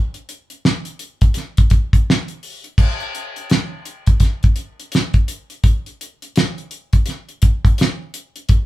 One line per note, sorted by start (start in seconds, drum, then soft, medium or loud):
0.14 closed hi-hat soft
0.29 closed hi-hat medium
0.50 closed hi-hat soft
0.65 snare loud
0.85 closed hi-hat soft
0.99 closed hi-hat medium
1.21 kick medium
1.21 closed hi-hat soft
1.34 snare soft
1.34 closed hi-hat medium
1.57 kick medium
1.57 closed hi-hat soft
1.70 kick loud
1.70 closed hi-hat medium
1.93 kick medium
1.93 closed hi-hat soft
2.10 snare loud
2.28 closed hi-hat soft
2.43 open hi-hat soft
2.64 closed hi-hat soft
2.78 kick loud
2.78 crash medium
3.00 closed hi-hat soft
3.15 closed hi-hat medium
3.36 closed hi-hat soft
3.50 snare loud
3.50 closed hi-hat medium
3.85 closed hi-hat medium
4.07 kick medium
4.07 closed hi-hat soft
4.20 kick medium
4.20 snare soft
4.20 closed hi-hat medium
4.43 kick medium
4.43 closed hi-hat soft
4.56 closed hi-hat medium
4.80 closed hi-hat soft
4.92 snare medium
4.92 closed hi-hat medium
5.14 kick medium
5.14 closed hi-hat soft
5.28 closed hi-hat medium
5.50 closed hi-hat soft
5.64 kick loud
5.64 closed hi-hat medium
5.86 closed hi-hat soft
6.01 closed hi-hat medium
6.22 closed hi-hat soft
6.36 snare loud
6.36 closed hi-hat medium
6.58 closed hi-hat soft
6.71 closed hi-hat medium
6.93 kick medium
6.93 closed hi-hat medium
7.06 snare soft
7.06 closed hi-hat medium
7.29 closed hi-hat soft
7.42 kick medium
7.42 closed hi-hat medium
7.65 kick medium
7.65 closed hi-hat soft
7.78 snare medium
7.78 closed hi-hat medium
8.14 closed hi-hat medium
8.36 closed hi-hat soft
8.49 kick loud
8.49 closed hi-hat medium